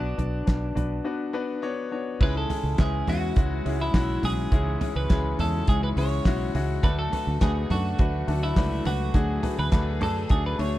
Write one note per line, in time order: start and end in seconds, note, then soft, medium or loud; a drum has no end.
0.00 0.13 B1 medium
0.00 0.13 B3 medium
0.00 0.14 D4 medium
0.00 1.59 D4 medium
0.00 0.14 F#4 medium
0.00 0.14 B4 medium
0.17 0.42 B1 medium
0.17 0.43 B3 medium
0.17 0.43 D4 medium
0.17 0.43 F#4 medium
0.17 0.43 D5 medium
0.17 closed hi-hat medium
0.17 floor tom soft
0.46 0.71 B1 medium
0.46 0.72 B3 medium
0.46 0.72 D4 medium
0.46 0.72 F#4 soft
0.46 0.72 B4 medium
0.46 kick medium
0.46 snare loud
0.46 clap medium
0.46 closed hi-hat medium
0.75 1.00 B1 medium
0.75 1.00 B3 medium
0.75 1.01 D4 medium
0.75 1.01 F#4 medium
0.75 1.01 B4 medium
0.75 closed hi-hat medium
0.75 floor tom medium
1.04 1.30 B3 medium
1.04 1.30 D4 medium
1.04 1.30 F#4 medium
1.04 1.30 B4 medium
1.33 1.59 B3 loud
1.33 1.59 D4 medium
1.33 1.59 F#4 medium
1.33 1.59 B4 loud
1.62 1.87 B3 loud
1.62 1.88 D4 medium
1.62 1.88 F#4 medium
1.62 1.88 C#5 loud
1.91 2.16 B3 medium
1.91 2.17 D4 medium
1.91 2.17 F#4 medium
1.91 2.17 C#5 medium
2.20 2.45 C#2 loud
2.20 3.04 G#2 medium
2.20 6.79 C#3 medium
2.20 6.79 E3 medium
2.20 2.46 G#3 loud
2.20 2.46 C#4 medium
2.20 4.50 E4 medium
2.20 2.46 E4 medium
2.20 2.46 G#4 loud
2.20 2.37 B4 medium
2.20 kick loud
2.20 crash medium
2.37 2.77 A4 medium
2.49 2.74 G#3 medium
2.49 2.75 C#4 medium
2.49 2.75 E4 medium
2.49 2.75 G#4 medium
2.49 floor tom medium
2.49 hi-hat pedal medium
2.49 open hi-hat medium
2.63 2.76 C#2 medium
2.78 3.02 C#2 loud
2.78 3.03 G#3 medium
2.78 3.04 C#4 medium
2.78 3.04 E4 medium
2.78 3.09 G#4 medium
2.78 3.04 B4 medium
2.78 kick loud
2.78 snare loud
2.78 clap medium
2.78 hi-hat pedal medium
2.78 open hi-hat medium
3.07 3.31 E2 medium
3.07 3.32 G#3 medium
3.07 3.33 C#4 medium
3.07 3.33 E4 medium
3.07 3.33 F#4 medium
3.07 3.77 F#4 medium
3.07 floor tom medium
3.07 hi-hat pedal medium
3.07 open hi-hat medium
3.36 3.60 C#2 loud
3.36 3.61 G#3 medium
3.36 3.62 C#4 medium
3.36 3.62 E4 medium
3.36 3.62 F#4 medium
3.36 kick loud
3.36 hi-hat pedal medium
3.36 open hi-hat loud
3.65 3.89 C#2 medium
3.65 3.90 G#3 medium
3.65 3.90 C#4 medium
3.65 3.91 E4 medium
3.65 3.91 G#4 medium
3.65 hi-hat pedal medium
3.65 open hi-hat medium
3.82 4.25 E4 medium
3.94 4.18 B1 medium
3.94 4.19 G#3 medium
3.94 4.19 C#4 medium
3.94 4.19 E4 medium
3.94 4.20 F#4 loud
3.94 kick loud
3.94 snare loud
3.94 clap medium
3.94 hi-hat pedal medium
3.94 open hi-hat medium
4.23 4.47 B1 medium
4.23 4.48 G#3 medium
4.23 4.48 C#4 medium
4.23 4.48 E4 medium
4.23 4.48 G#4 medium
4.23 4.96 G#4 loud
4.23 floor tom medium
4.23 hi-hat pedal medium
4.23 open hi-hat medium
4.52 4.76 C#2 loud
4.52 5.35 G#2 medium
4.52 4.77 G#3 medium
4.52 4.77 C#4 medium
4.52 4.77 E4 medium
4.52 9.10 F#4 medium
4.52 4.77 G#4 loud
4.52 kick loud
4.52 hi-hat pedal medium
4.52 open hi-hat medium
4.81 5.06 G#3 medium
4.81 5.06 C#4 medium
4.81 5.06 E4 medium
4.81 5.06 G#4 medium
4.81 floor tom medium
4.81 hi-hat pedal medium
4.81 open hi-hat medium
4.96 5.07 C#2 medium
4.96 5.40 B4 medium
5.09 5.34 C#2 loud
5.09 5.34 G#3 medium
5.09 5.35 C#4 medium
5.09 5.35 E4 medium
5.09 5.35 G#4 medium
5.09 kick loud
5.09 snare medium
5.09 clap medium
5.09 hi-hat pedal medium
5.09 open hi-hat medium
5.39 5.62 E2 medium
5.39 5.64 G#3 medium
5.39 5.64 C#4 medium
5.39 5.64 E4 medium
5.39 5.64 G#4 medium
5.39 5.69 A4 medium
5.39 floor tom medium
5.39 hi-hat pedal medium
5.39 open hi-hat medium
5.67 5.92 C#2 medium
5.67 5.93 G#3 medium
5.67 5.93 C#4 medium
5.67 5.93 E4 medium
5.67 5.93 G#4 medium
5.67 5.83 G#4 medium
5.67 kick loud
5.67 hi-hat pedal medium
5.67 open hi-hat loud
5.83 5.88 B4 loud
5.96 6.20 C#2 medium
5.96 6.22 G#3 medium
5.96 6.22 C#4 medium
5.96 6.22 E4 medium
5.96 6.22 G#4 medium
5.96 6.51 C#5 medium
5.96 hi-hat pedal medium
5.96 open hi-hat medium
6.25 6.49 B1 medium
6.25 6.51 G#3 medium
6.25 6.51 C#4 medium
6.25 6.51 E4 medium
6.25 6.51 F#4 loud
6.25 kick loud
6.25 snare loud
6.25 clap medium
6.25 hi-hat pedal medium
6.25 open hi-hat medium
6.55 6.78 C#2 medium
6.55 6.79 G#3 medium
6.55 6.79 C#4 medium
6.55 6.80 E4 medium
6.55 6.80 F#4 medium
6.55 floor tom medium
6.55 hi-hat pedal medium
6.55 open hi-hat medium
6.83 7.07 D2 medium
6.83 7.66 A2 medium
6.83 10.79 D3 medium
6.83 10.79 F#3 medium
6.83 7.08 A3 loud
6.83 10.79 A3 medium
6.83 7.08 D4 medium
6.83 7.08 F#4 loud
6.83 7.09 A4 loud
6.83 6.98 B4 medium
6.83 kick loud
6.83 hi-hat pedal medium
6.83 open hi-hat medium
6.99 7.41 A4 loud
7.12 7.37 A3 medium
7.12 7.37 D4 medium
7.12 7.37 F#4 medium
7.12 7.38 B4 medium
7.12 floor tom medium
7.12 hi-hat pedal medium
7.12 open hi-hat medium
7.27 7.39 D2 medium
7.41 7.65 D2 loud
7.41 7.66 A3 medium
7.41 7.66 D4 medium
7.41 7.66 F#4 medium
7.41 7.71 G#4 medium
7.41 7.66 B4 medium
7.41 kick medium
7.41 snare medium
7.41 clap medium
7.41 hi-hat pedal medium
7.41 open hi-hat medium
7.70 7.94 F#2 medium
7.70 7.95 A3 medium
7.70 7.95 D4 medium
7.70 7.95 F#4 medium
7.70 8.43 F#4 medium
7.70 7.96 A4 medium
7.70 floor tom medium
7.70 hi-hat pedal medium
7.70 open hi-hat medium
7.99 8.23 D2 loud
7.99 8.24 A3 medium
7.99 8.24 D4 medium
7.99 8.24 F#4 medium
7.99 8.24 B4 medium
7.99 kick loud
7.99 hi-hat pedal medium
7.99 open hi-hat medium
8.27 8.51 D2 loud
8.27 8.52 A3 medium
8.27 8.53 D4 medium
8.27 8.53 F#4 medium
8.27 8.53 A4 medium
8.27 hi-hat pedal medium
8.27 open hi-hat medium
8.43 8.83 E4 medium
8.56 8.80 C#2 medium
8.56 8.81 A3 medium
8.56 8.82 D4 medium
8.56 8.82 F#4 medium
8.56 8.82 B4 loud
8.56 kick loud
8.56 snare loud
8.56 clap medium
8.56 hi-hat pedal medium
8.56 open hi-hat medium
8.85 9.09 C#2 loud
8.85 9.10 A3 medium
8.85 9.10 D4 medium
8.85 9.11 F#4 medium
8.85 9.59 F#4 medium
8.85 9.11 B4 medium
8.85 floor tom medium
8.85 hi-hat pedal medium
8.85 open hi-hat medium
9.14 9.38 D2 loud
9.14 9.97 A2 medium
9.14 9.39 A3 medium
9.14 9.39 D4 medium
9.14 9.39 F#4 medium
9.14 10.79 G#4 medium
9.14 9.40 G#4 loud
9.14 kick loud
9.14 hi-hat pedal medium
9.14 open hi-hat medium
9.43 9.68 A3 medium
9.43 9.68 D4 medium
9.43 9.68 F#4 medium
9.43 9.68 B4 medium
9.43 floor tom medium
9.43 hi-hat pedal medium
9.43 open hi-hat medium
9.58 9.70 D2 medium
9.58 10.02 B4 medium
9.71 10.01 D2 loud
9.71 9.97 A3 medium
9.71 9.97 D4 medium
9.71 9.97 F#4 medium
9.71 9.97 A4 medium
9.71 kick loud
9.71 snare medium
9.71 clap medium
9.71 hi-hat pedal medium
9.71 open hi-hat medium
10.00 10.25 F#2 medium
10.00 10.25 A3 medium
10.00 10.26 D4 medium
10.00 10.26 F#4 medium
10.00 10.31 A4 medium
10.00 10.26 B4 medium
10.00 floor tom medium
10.00 hi-hat pedal medium
10.00 open hi-hat medium
10.29 10.54 D2 loud
10.29 10.55 A3 medium
10.29 10.55 D4 medium
10.29 10.55 F#4 medium
10.29 10.44 G#4 medium
10.29 10.55 A4 loud
10.29 kick loud
10.29 hi-hat pedal medium
10.29 open hi-hat loud
10.46 10.60 B4 medium
10.58 10.79 D2 medium
10.58 10.79 A3 medium
10.58 10.79 D4 medium
10.58 10.79 F#4 medium
10.58 10.79 A4 medium
10.58 10.79 C#5 medium
10.58 hi-hat pedal medium
10.58 open hi-hat medium